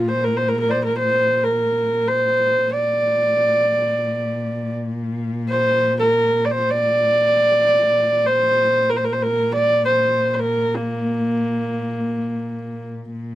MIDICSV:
0, 0, Header, 1, 3, 480
1, 0, Start_track
1, 0, Tempo, 500000
1, 12816, End_track
2, 0, Start_track
2, 0, Title_t, "Horsehead fiddle"
2, 0, Program_c, 0, 110
2, 79, Note_on_c, 0, 72, 73
2, 230, Note_on_c, 0, 70, 70
2, 245, Note_off_c, 0, 72, 0
2, 354, Note_on_c, 0, 72, 74
2, 368, Note_off_c, 0, 70, 0
2, 468, Note_on_c, 0, 70, 71
2, 482, Note_off_c, 0, 72, 0
2, 570, Note_off_c, 0, 70, 0
2, 576, Note_on_c, 0, 70, 67
2, 659, Note_on_c, 0, 74, 53
2, 673, Note_off_c, 0, 70, 0
2, 679, Note_on_c, 0, 72, 71
2, 694, Note_off_c, 0, 74, 0
2, 802, Note_off_c, 0, 72, 0
2, 813, Note_on_c, 0, 70, 74
2, 936, Note_off_c, 0, 70, 0
2, 943, Note_on_c, 0, 72, 85
2, 1378, Note_on_c, 0, 70, 76
2, 1393, Note_off_c, 0, 72, 0
2, 1990, Note_on_c, 0, 72, 83
2, 2005, Note_off_c, 0, 70, 0
2, 2622, Note_on_c, 0, 74, 82
2, 2637, Note_off_c, 0, 72, 0
2, 4561, Note_off_c, 0, 74, 0
2, 5271, Note_on_c, 0, 72, 88
2, 5709, Note_off_c, 0, 72, 0
2, 5752, Note_on_c, 0, 70, 82
2, 6191, Note_on_c, 0, 74, 55
2, 6206, Note_off_c, 0, 70, 0
2, 6246, Note_on_c, 0, 72, 82
2, 6260, Note_off_c, 0, 74, 0
2, 6443, Note_on_c, 0, 74, 97
2, 6457, Note_off_c, 0, 72, 0
2, 7930, Note_on_c, 0, 72, 95
2, 7944, Note_off_c, 0, 74, 0
2, 8538, Note_on_c, 0, 70, 71
2, 8553, Note_off_c, 0, 72, 0
2, 8607, Note_on_c, 0, 72, 73
2, 8622, Note_off_c, 0, 70, 0
2, 8684, Note_on_c, 0, 70, 69
2, 8698, Note_off_c, 0, 72, 0
2, 8762, Note_on_c, 0, 72, 65
2, 8776, Note_off_c, 0, 70, 0
2, 8859, Note_on_c, 0, 70, 81
2, 8873, Note_off_c, 0, 72, 0
2, 9144, Note_on_c, 0, 74, 86
2, 9158, Note_off_c, 0, 70, 0
2, 9449, Note_off_c, 0, 74, 0
2, 9455, Note_on_c, 0, 72, 83
2, 9919, Note_off_c, 0, 72, 0
2, 9919, Note_on_c, 0, 72, 57
2, 9979, Note_on_c, 0, 70, 73
2, 9993, Note_off_c, 0, 72, 0
2, 10319, Note_on_c, 0, 58, 70
2, 10333, Note_off_c, 0, 70, 0
2, 12376, Note_off_c, 0, 58, 0
2, 12816, End_track
3, 0, Start_track
3, 0, Title_t, "Cello"
3, 0, Program_c, 1, 42
3, 0, Note_on_c, 1, 46, 62
3, 2539, Note_off_c, 1, 46, 0
3, 2545, Note_on_c, 1, 46, 59
3, 7561, Note_off_c, 1, 46, 0
3, 7567, Note_on_c, 1, 46, 59
3, 12587, Note_off_c, 1, 46, 0
3, 12594, Note_on_c, 1, 46, 58
3, 12816, Note_off_c, 1, 46, 0
3, 12816, End_track
0, 0, End_of_file